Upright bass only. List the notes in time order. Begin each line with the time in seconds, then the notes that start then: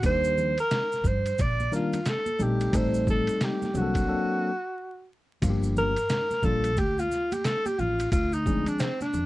0.03 D#2
1.04 G2
1.39 A#1
2.40 A#1
2.73 A1
3.74 C2
5.42 G1
6.43 A#1
6.78 D2
7.79 A1
8.12 D2
9.14 F2